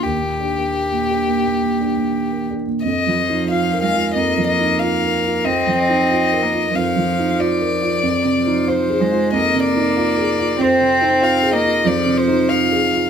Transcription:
<<
  \new Staff \with { instrumentName = "Violin" } { \time 4/4 \key bes \mixolydian \tempo 4 = 93 g'2.~ g'8 r8 | ees''4 f''8 f''8 ees''8 ees''8 f''4 | ees''8 ees''4. f''4 d''4~ | d''4 c''4 ees''8 d''4. |
c''4 f''8 ees''8 d''8 c''8 f''4 | }
  \new Staff \with { instrumentName = "Grand piano" } { \time 4/4 \key bes \mixolydian <ees, bes>16 bes,16 <d' g'>16 bes8 bes,16 <d' g'>16 bes16 bes,16 bes16 <d' g'>16 bes,8 bes16 <d' g'>16 bes,16 | \tuplet 3/2 { f,8 f8 ees'8 f'8 bes'8 f'8 f,8 f8 ees'8 f'8 bes'8 f'8 } | \tuplet 3/2 { f,8 f8 ees'8 f'8 bes'8 f'8 f,8 f8 ees'8 f'8 bes'8 f'8 } | \tuplet 3/2 { f,8 c8 ees'8 f'8 aes'8 f'8 f,8 c8 ees'8 f'8 aes'8 f'8 } |
\tuplet 3/2 { f,8 c8 ees'8 f'8 aes'8 f'8 f,8 c8 ees'8 f'8 aes'8 f'8 } | }
  \new Staff \with { instrumentName = "Cello" } { \time 4/4 \key bes \mixolydian r1 | r8 f4 aes8 bes2 | c'4. bes8 f2 | r8 f4 aes8 bes2 |
c'4. bes8 f2 | }
>>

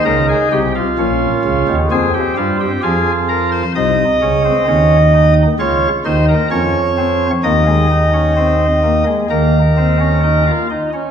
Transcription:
<<
  \new Staff \with { instrumentName = "Pipe organ" } { \time 4/4 \key f \minor \tempo 4 = 65 << { bes'16 aes'16 g'16 f'4~ f'16 aes'16 g'16 f'16 g'16 aes'8 bes'16 c''16 | \key c \phrygian ees''2 des''8 c''16 bes'16 des''4 | ees''2 bes'4. r8 | } \\ { ees'4 des'4 c'4 f'4 | ees'8 des'16 c'16 des'8 ees'8 f'8 ees'8 des'8 c'8 | bes16 aes16 ees'16 des'16 c'8 bes16 aes16 bes8 c'16 des'16 ees'16 f'16 ees'16 des'16 | } >> }
  \new Staff \with { instrumentName = "Pipe organ" } { \clef bass \time 4/4 \key f \minor <des, des>8 <c, c>8 <bes,, bes,>8 <des, des>16 <ees, ees>16 <f, f>8 <g, g>8 <f, f>4 | \key c \phrygian <c, c>8 <des, des>8 <ees, ees>4 <des, des>8 <ees, ees>8 <f, f>4 | <ees, ees>2 <ees, ees>4. r8 | }
>>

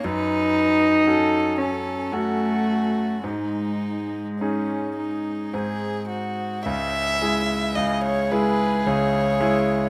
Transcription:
<<
  \new Staff \with { instrumentName = "Violin" } { \time 3/4 \key cis \minor \tempo 4 = 54 b'4 a'8 a'8 fis'4 | dis'4 cis'8 dis'8 gis'8 fis'8 | e''4 dis''16 cis''16 b'8 cis''4 | }
  \new Staff \with { instrumentName = "Cello" } { \time 3/4 \key cis \minor dis'4. cis'8 a4 | gis2 r4 | r4 gis'2 | }
  \new Staff \with { instrumentName = "Grand piano" } { \time 3/4 \key cis \minor fis,4 <cis' fis' a'>4 <cis' fis' a'>4 | gis,4 <cis' dis' gis'>4 <gis, bis dis' gis'>4 | <cis, cis>8 <gis e' gis'>8 <cis, cis>8 <gis e' gis'>8 <cis, cis>8 <gis e' gis'>8 | }
>>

